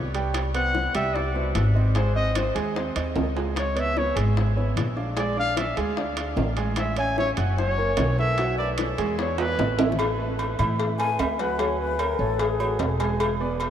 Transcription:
Already playing: upright bass C2
0.14 grand piano G3 G4 G5, high bongo, high timbale
0.34 high bongo, high timbale
0.54 grand piano B3 B4 C5, trumpet F#5, high timbale
0.75 grand piano B3 B4 C5, high bongo
0.95 upright bass C2, grand piano G3 G4 G5, trumpet E5, high bongo, high timbale
1.14 trumpet D5, high bongo
1.34 grand piano B2 B4 C5, high bongo
1.55 upright bass G#1, high bongo, low bongo, high timbale
1.75 grand piano C4 C5 D#5, high bongo
1.95 grand piano G#3 G#4 G#5, trumpet C5, high bongo, high timbale
2.15 grand piano C4 C5 D#5, trumpet D#5
2.35 trumpet C5, high bongo, high timbale
2.55 upright bass D#2, grand piano G#3 G#4 G#5, high bongo, high timbale
2.76 grand piano C4 C5 D#5, high bongo
2.95 upright bass D#2, grand piano C4 C5 D#5, high bongo, high timbale
3.16 upright bass C#2, high bongo, low bongo, low timbale
3.36 grand piano G#3 G#4 G#5, high bongo, high timbale
3.56 trumpet C#5, high bongo, high timbale
3.75 grand piano B3 B4 C#5, trumpet E5, high timbale
3.96 grand piano B3 B4 C#5, trumpet C#5, high bongo
4.15 upright bass G#1, grand piano G#3 G#4 G#5, high bongo, high timbale
4.37 high bongo
4.56 grand piano B3 B4 C#5, high bongo
4.77 upright bass A#1, high bongo, low bongo, high timbale
4.96 grand piano D4 D5 F5, high bongo
5.17 grand piano G#3 G#4 G#5, trumpet D5, high bongo, high timbale
5.37 grand piano D4 D5 F5, trumpet F5
5.57 trumpet E5, high bongo, high timbale
5.77 upright bass D2, grand piano G#3 G#4 G#5, high bongo, high timbale
5.97 grand piano D4 D5 F5, high bongo
6.17 grand piano D4 D5 F5, high bongo, high timbale
6.36 upright bass A1, high bongo, low bongo, low timbale
6.57 grand piano G#3 G#4 G#5, high bongo, high timbale
6.76 trumpet E5, high bongo, high timbale
6.97 grand piano C#4 C#5 E5, trumpet G#5, high timbale
7.17 grand piano C#4 C#5 E5, trumpet C#5, high bongo
7.37 upright bass F#1, grand piano F#3 F#4 F#5, high bongo, high timbale
7.58 trumpet C#5, high bongo
7.77 grand piano A#3 A#4 C#5, high bongo
7.97 upright bass B1, high bongo, low bongo, high timbale, low timbale
8.17 grand piano A3 A4 B4, trumpet E5, high bongo
8.38 grand piano F#3 F#4 F#5, high bongo, high timbale
8.58 grand piano A3 A4 B4, trumpet D5
8.78 high bongo, high timbale
8.98 upright bass E2, grand piano G#3 G#4 G#5, high bongo, high timbale
9.18 grand piano B3 B4 D5, trumpet C#5, high bongo
9.38 grand piano B3 B4 D5, trumpet B4, high bongo, high timbale
9.58 upright bass A1, high bongo, low bongo, low timbale
9.78 grand piano E3 E4 E5, high bongo, low timbale
9.92 low bongo
9.99 cowbell, low agogo
10.18 grand piano A3 A4 B4
10.39 cowbell, low agogo
10.59 upright bass A2, grand piano E3 E4 E5, cowbell, low agogo
10.79 cowbell
10.98 grand piano A3 A4 B4, flute G#5, cowbell, low agogo
11.19 upright bass D2, flute E5, cowbell, low timbale, low agogo
11.39 grand piano F#3 F#4 F#5, flute B4, cowbell
11.59 grand piano F#3 F#4 F#5, flute C#5, cowbell, low agogo
11.80 flute B4
11.99 grand piano A3 A4 C#5, flute A#4, cowbell, low agogo
12.19 upright bass A1, grand piano A3 A4 C#5, flute A4
12.39 flute G#4, cowbell, low agogo
12.59 grand piano A3 F#4 C#5, low agogo
12.79 upright bass E1, cowbell, low timbale
12.99 grand piano G#3 G#4 G#5, cowbell, low agogo
13.20 cowbell, low agogo
13.40 grand piano B3 B4 D5
13.60 cowbell, low agogo

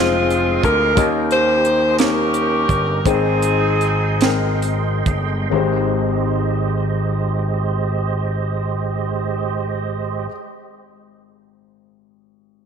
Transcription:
Already playing: slap bass F1, saxophone section G#3 C4 F4, grand piano G#3 C4 D#4 F4 C5, tonewheel organ G#4 D#5 F5 C6
0.30 closed hi-hat
0.63 slap bass D2, saxophone section A#4, kick, closed hi-hat
0.95 slap bass D#2, grand piano D#3 A#3 C#4 D#4 G4 D#5, tonewheel organ A#4 D#5 G5, kick, closed hi-hat
1.31 saxophone section G4 C5, closed hi-hat
1.65 closed hi-hat
1.99 grand piano A#3 C#4 D#4 G4 C#5, saxophone section C#4 G4 A#4, snare, closed hi-hat
2.34 closed hi-hat
2.69 slap bass G1, kick, closed hi-hat
3.05 slap bass G#1, grand piano G#2 G#3 C4 D#4 C5 G5, saxophone section C4 D#4 G#4, tonewheel organ G#4 C6, kick, closed hi-hat
3.42 closed hi-hat
3.81 closed hi-hat
4.21 grand piano G#3 C4 D#4 A#4 G5, snare, closed hi-hat
4.62 closed hi-hat
5.06 slap bass G1, kick, closed hi-hat
5.50 slap bass G#1, grand piano G#1 G#3 C4 D#4 G4, tonewheel organ G#3 G4 C5 D#5
5.55 grand piano C5

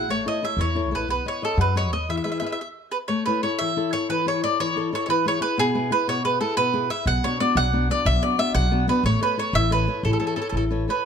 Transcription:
0.07 upright bass A1, nylon-string guitar A3, mandolin C#5
0.26 nylon-string guitar E4 A4 C#5, mandolin D#5
0.42 nylon-string guitar E4 A4 C#5, mandolin E5
0.57 upright bass E2, nylon-string guitar E3
0.61 mandolin C#5
0.75 nylon-string guitar E4 A4 C#5
0.91 upright bass A1, nylon-string guitar E4 A4 C#5
0.95 mandolin B4
1.07 upright bass B1, nylon-string guitar B3, mandolin B4
1.26 nylon-string guitar B4 C#5 D#5, mandolin C#5
1.42 mandolin A4, nylon-string guitar B4 C#5 D#5
1.57 upright bass F#2, nylon-string guitar F#3, mandolin B4
1.75 nylon-string guitar B4 C#5 D#5, mandolin C#5
1.91 upright bass D#2, nylon-string guitar B4 C#5 D#5, mandolin D#5
2.08 upright bass E2, nylon-string guitar E3, mandolin E5
2.17 mandolin E5
2.24 nylon-string guitar E4 G#4 B4, mandolin E5
2.32 mandolin E5
2.40 nylon-string guitar E4 G#4 B4, mandolin E5
2.47 mandolin E5
2.52 mandolin E5
2.61 mandolin E5
2.92 mandolin B4
3.08 nylon-string guitar A3, mandolin C#5
3.26 nylon-string guitar E4 A4 C#5, mandolin B4
3.43 nylon-string guitar E4 A4 C#5, mandolin C#5
3.59 nylon-string guitar E3, mandolin E5
3.77 nylon-string guitar E4 A4 C#5
3.93 nylon-string guitar E4 A4 C#5, mandolin C#5
4.09 nylon-string guitar E3, mandolin B4
4.26 nylon-string guitar E4 A4 C#5, mandolin C#5
4.44 nylon-string guitar E4 A4 C#5, mandolin D5
4.60 nylon-string guitar E3, mandolin C#5
4.76 nylon-string guitar E4 A4 C#5
4.93 nylon-string guitar E4 A4 C#5, mandolin C#5
5.06 nylon-string guitar E3, mandolin C#5
5.10 mandolin B4
5.26 nylon-string guitar E4 G#4 B4, mandolin C#5
5.41 nylon-string guitar E4 G#4 B4, mandolin B4
5.58 nylon-string guitar B2, mandolin G#4
5.75 nylon-string guitar E4 G#4 B4
5.91 nylon-string guitar E4 G#4 B4, mandolin B4
6.07 nylon-string guitar B2, mandolin C#5
6.24 nylon-string guitar E4 G#4 B4, mandolin B4
6.41 nylon-string guitar E4 G#4 B4, mandolin A4
6.57 nylon-string guitar B2, mandolin B4
6.73 nylon-string guitar E4 G#4 B4
6.90 nylon-string guitar E4 G#4 B4, mandolin E5
7.06 upright bass B1, nylon-string guitar B2, mandolin F#5
7.24 nylon-string guitar B3 D4 F#4, mandolin C#5
7.40 nylon-string guitar B3 D4 F#4, mandolin D5
7.55 upright bass B1, nylon-string guitar F#3, mandolin F#5
7.73 nylon-string guitar B3 D4 F#4
7.90 nylon-string guitar B3 D4 F#4, mandolin D5
8.05 upright bass B1, nylon-string guitar F#3, mandolin E5
8.22 nylon-string guitar B3 D4 F#4, mandolin D5
8.38 nylon-string guitar B3 D4 F#4, mandolin E5
8.54 upright bass B1, nylon-string guitar F#3, mandolin F#5
8.71 nylon-string guitar B3 D4 F#4
8.88 nylon-string guitar B3 D4 F#4, mandolin B4
9.03 upright bass A1, nylon-string guitar A3, mandolin C#5
9.21 nylon-string guitar A4 B4 C#5, mandolin B4
9.38 nylon-string guitar A4 B4 C#5, mandolin C#5
9.53 upright bass A1, nylon-string guitar E3, mandolin E5
9.71 nylon-string guitar A4 B4 C#5, mandolin B4
9.87 nylon-string guitar A4 B4 C#5
10.03 upright bass A1, nylon-string guitar E3, mandolin A4
10.13 mandolin A4
10.20 mandolin A4, nylon-string guitar A4 B4 C#5
10.27 mandolin A4
10.36 mandolin A4, nylon-string guitar A4 B4 C#5
10.42 mandolin A4
10.49 upright bass A1, mandolin A4
10.54 nylon-string guitar E3, mandolin A4
10.71 nylon-string guitar A4 B4 C#5
10.88 nylon-string guitar A4 B4 C#5, mandolin B4

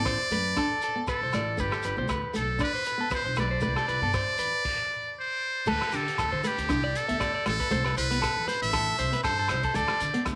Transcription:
Already playing: upright bass A1, steel-string acoustic guitar B3, muted trumpet D5
0.05 clean electric guitar C5, kick, cross-stick, low agogo, shekere
0.31 upright bass F#2, steel-string acoustic guitar A3, clean electric guitar B4, closed hi-hat, shekere
0.56 steel-string acoustic guitar D4, clean electric guitar A4, kick, cross-stick, low agogo, shekere
0.81 clean electric guitar A4, closed hi-hat, shekere
0.95 steel-string acoustic guitar B3
1.07 muted trumpet A4, clean electric guitar B4, kick, cross-stick, low agogo, shekere
1.21 upright bass C2, clean electric guitar C5
1.32 upright bass A1, steel-string acoustic guitar A3, clean electric guitar D5, cross-stick, closed hi-hat, low agogo, shekere
1.57 upright bass G1, steel-string acoustic guitar A3, muted trumpet G4, clean electric guitar B4, kick, shekere
1.72 clean electric guitar A4, cross-stick, low agogo
1.83 upright bass G1, clean electric guitar B4, closed hi-hat, shekere
1.97 upright bass D2, steel-string acoustic guitar B3, clean electric guitar C5
2.08 clean electric guitar B4, kick, cross-stick, low agogo, shekere
2.34 upright bass B1, steel-string acoustic guitar A3, clean electric guitar A4, muted trumpet A4, closed hi-hat, shekere
2.59 steel-string acoustic guitar D4, clean electric guitar D5, kick, cross-stick, low agogo, shekere
2.64 muted trumpet B4
2.75 clean electric guitar C5
2.85 clean electric guitar B4, closed hi-hat, shekere
2.98 steel-string acoustic guitar B3, clean electric guitar A4
3.10 clean electric guitar B4, kick, cross-stick, low agogo, shekere
3.14 muted trumpet C5
3.25 upright bass E1, clean electric guitar C5
3.36 upright bass B1, steel-string acoustic guitar A3, clean electric guitar B4, cross-stick, closed hi-hat, low agogo, shekere
3.40 muted trumpet D5
3.51 clean electric guitar C5
3.60 upright bass C2, steel-string acoustic guitar A3, clean electric guitar B4, kick, shekere
3.76 clean electric guitar A4, cross-stick, low agogo
3.88 upright bass C2, clean electric guitar B4, closed hi-hat
4.02 upright bass G2, steel-string acoustic guitar B3, clean electric guitar A4
4.13 clean electric guitar C5, kick, cross-stick, low agogo, shekere
4.38 upright bass E2, clean electric guitar B4, closed hi-hat, shekere
4.65 kick, crash
5.20 muted trumpet C5
5.66 upright bass D2, steel-string acoustic guitar A3, clean electric guitar A4, muted trumpet B4, kick, crash, shekere
5.81 cross-stick, low agogo
5.92 upright bass D3, clean electric guitar G4, muted trumpet A4, closed hi-hat, shekere
6.08 closed hi-hat
6.18 upright bass D2, clean electric guitar A4, kick, cross-stick, closed hi-hat, low agogo, shekere
6.32 upright bass D3, clean electric guitar C5
6.44 steel-string acoustic guitar A3, muted trumpet G4, clean electric guitar B4, closed hi-hat, shekere
6.58 upright bass D2, closed hi-hat
6.69 upright bass C2, steel-string acoustic guitar D4, kick, cross-stick, closed hi-hat, low agogo, shekere
6.84 clean electric guitar D5
6.95 muted trumpet A4, closed hi-hat, shekere
7.08 upright bass D2, steel-string acoustic guitar B3, clean electric guitar E5, closed hi-hat
7.20 clean electric guitar D5, kick, cross-stick, closed hi-hat, low agogo, shekere
7.35 clean electric guitar D5
7.46 upright bass A1, steel-string acoustic guitar A3, clean electric guitar A4, muted trumpet A4, cross-stick, closed hi-hat, low agogo, shekere
7.60 clean electric guitar B4, kick, closed hi-hat
7.70 upright bass C2, steel-string acoustic guitar A3, clean electric guitar C5, kick, closed hi-hat, shekere
7.85 clean electric guitar B4, cross-stick, low agogo
7.96 upright bass C2, muted trumpet B4, clean electric guitar C5, closed hi-hat, shekere
8.11 steel-string acoustic guitar B3, clean electric guitar B4, closed hi-hat
8.22 clean electric guitar A4, kick, cross-stick, closed hi-hat, low agogo, shekere
8.37 upright bass E2
8.48 clean electric guitar B4, muted trumpet C5, muted steel-string acoustic guitar stroke, closed hi-hat, shekere
8.62 upright bass A1, muted trumpet E5, closed hi-hat
8.73 steel-string acoustic guitar D4, clean electric guitar A4, kick, cross-stick, closed hi-hat, low agogo, shekere
8.98 upright bass C2, clean electric guitar C5, closed hi-hat, shekere
9.12 steel-string acoustic guitar C4, clean electric guitar B4, closed hi-hat
9.23 upright bass G2, clean electric guitar A4, muted trumpet C5, kick, cross-stick, closed hi-hat, low agogo, shekere
9.39 clean electric guitar A4
9.48 upright bass C2, clean electric guitar C5, cross-stick, closed hi-hat, low agogo, shekere
9.63 clean electric guitar A4, kick, closed hi-hat
9.74 upright bass D2, steel-string acoustic guitar A3, clean electric guitar A4, muted trumpet D5, kick, closed hi-hat, shekere
9.88 cross-stick, low agogo
10.00 upright bass D3, closed hi-hat, shekere
10.14 steel-string acoustic guitar B3, closed hi-hat
10.25 upright bass D2, kick, cross-stick, closed hi-hat, low agogo, shekere

